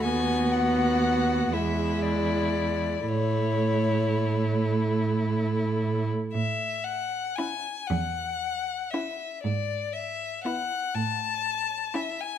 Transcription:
<<
  \new Staff \with { instrumentName = "Violin" } { \time 6/8 \key a \major \tempo 4. = 39 gis''8 fis''4 e''8 d''4 | cis''4. r4. | e''8 fis''8 gis''8 fis''4 e''8 | d''8 e''8 fis''8 a''4 e''16 gis''16 | }
  \new Staff \with { instrumentName = "Violin" } { \time 6/8 \key a \major fis'4. e'4. | e'2. | r4 e'8 r4 e'8 | r4 e'8 r4 e'8 | }
  \new Staff \with { instrumentName = "Viola" } { \time 6/8 \key a \major b4. gis4. | a2. | r4 cis'8 r4 cis'8 | r4 b8 r4 cis'8 | }
  \new Staff \with { instrumentName = "Cello" } { \clef bass \time 6/8 \key a \major dis,4. e,4. | a,2. | a,4. e,4. | gis,4. a,4. | }
>>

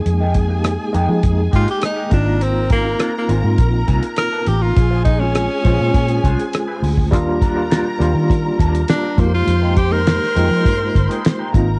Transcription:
<<
  \new Staff \with { instrumentName = "String section" } { \time 4/4 \key f \dorian \tempo 4 = 102 <aes' aes''>2.~ <aes' aes''>8 <bes' bes''>8~ | <bes' bes''>1 | <aes' aes''>1 | <bes' bes''>2.~ <bes' bes''>8 <c'' c'''>8~ |
<c'' c'''>2.~ <c'' c'''>8 <bes' bes''>8 | }
  \new Staff \with { instrumentName = "Clean electric guitar" } { \time 4/4 \key f \dorian r16 <aes bes ees' g'>16 r4 <aes bes ees' g'>16 r8. <aes bes ees' g'>16 r8 <aes bes ees' g'>16 r8 | r8 <aes c' f' bes'>16 r16 <aes c' f' bes'>16 r16 <aes c' f' c''>16 r8. <aes c' f' bes'>16 r8 <aes c' f' bes'>16 r8 | r16 <aes des' f' c''>16 r4 <aes des' f' c''>16 r8. <aes des' f' c''>16 r8 <aes des' f' c''>16 r8 | r8 <g d' f' bes'>16 r16 <g d' f' bes'>16 r16 <g d' f' c''>16 r8. <g d' f' bes'>16 r8 <g d' f' bes'>16 r8 |
r16 <aes ees' g' bes'>16 r4 <aes ees' g' bes'>16 r4 <aes ees' g' bes'>16 r16 <aes ees' g' bes'>16 r8 | }
  \new Staff \with { instrumentName = "Tenor saxophone" } { \time 4/4 \key f \dorian r2 r8 f'16 g'16 ees'8 d'8 | c'8 bes8. bes8 r4 r16 bes'8 g'16 f'16~ | f'8 ees'16 des'2~ des'8 r8. | r2. d'8 bes16 f'16~ |
f'8 g'16 bes'2~ bes'8 r8. | }
  \new Staff \with { instrumentName = "Tine electric piano" } { \time 4/4 \key f \dorian <aes bes ees' aes'>8 r16 <aes bes ees' g'>8 r16 <aes bes ees' aes'>4~ <aes bes ees' aes'>16 r8. <bes c' ees' f'>8~ | <bes c' ees' f'>8 r16 <bes c' ees' f'>8 r16 <bes c' ees' f'>4~ <bes c' ees' f'>16 r4 r16 | r8. <aes c' des' f'>8 r16 <aes des' f' c''>4~ <aes des' f' c''>16 r4 r16 | <g bes d' f'>8 r16 <g bes d' f'>8 r16 <g bes d' f'>4~ <g bes d' f'>16 r8. <aes bes ees' f' g'>8~ |
<aes bes ees' f' g'>8 r16 <aes bes ees' g'>8 r16 <aes bes ees' f'>4~ <aes bes ees' f'>16 r8. <bes c' ees' f'>8 | }
  \new Staff \with { instrumentName = "Fingered electric bass" } { \clef bass \time 4/4 \key f \dorian f,4~ f,16 r16 f,16 f16 f,8 aes,16 r8. aes,,8~ | aes,,4~ aes,,16 r16 aes,,16 aes,16 bes,,8 c,16 r8. a,,8 | bes,,4~ bes,,16 r16 bes,,16 bes,16 bes,8 c,16 r8. d,8 | ees,4~ ees,16 r16 ees,16 ees8. ees,8 r8 f,8 |
f,4~ f,16 r16 f,16 f16 g,8 g,,16 r8. aes,,8 | }
  \new DrumStaff \with { instrumentName = "Drums" } \drummode { \time 4/4 hh8 <hh bd>8 <hh ss>8 hh8 <hh bd>8 <hh bd>16 hh16 <hh ss>8 <hh bd>8 | hh8 <hh bd>8 <hh ss>8 hh8 <hh bd>8 <hh bd>16 hh16 <hh ss>8 hh8 | <hh bd>8 <hh bd>8 <hh ss>8 <hh bd>8 <hh bd>16 hh16 <hh bd>16 hh16 <hh ss>8 hho16 bd16 | <hh bd>8 <hh bd>8 <hh sn>8 hh8 <hh bd>8 <hh bd>16 hh16 <hh sn>8 <hh bd>8 |
hh8 <hh bd>8 <hh sn>16 sn16 hh8 <hh bd>8 <hh bd>16 hh16 <hh sn>8 <hh bd>8 | }
>>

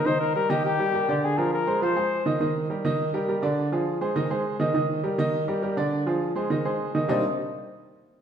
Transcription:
<<
  \new Staff \with { instrumentName = "Flugelhorn" } { \time 4/4 \key ees \major \tempo 4 = 205 c''8 bes'8 bes'8 g'8 g'2 | aes'8 bes'8 bes'4 c''4. r8 | r1 | r1 |
r1 | r1 | r1 | }
  \new Staff \with { instrumentName = "Upright piano" } { \time 4/4 \key ees \major <ees ees' ees''>4 <g g' bes'>8 <ees ees' ees''>4 <g g' bes'>8 <g g' bes'>8 <d d' d''>8~ | <d d' d''>8 <f f' aes'>4 <aes aes' c''>8 <f f' f''>8 <aes aes' c''>4 <ees ees' ees''>8 | <ees ees' ees''>4 <g g' bes'>8 <ees ees' ees''>4 <g g' bes'>8 <g g' bes'>8 <d d' d''>8~ | <d d' d''>8 <f f' aes'>4 <aes aes' c''>8 <ees ees' ees''>8 <aes aes' c''>4 <ees ees' ees''>8 |
<ees ees' ees''>4 <g g' bes'>8 <ees ees' ees''>4 <g g' bes'>8 <g g' bes'>8 <d d' d''>8~ | <d d' d''>8 <f f' aes'>4 <aes aes' c''>8 <ees ees' ees''>8 <aes aes' c''>4 <ees ees' ees''>8 | <c g bes c' d' ees'>8 r2. r8 | }
>>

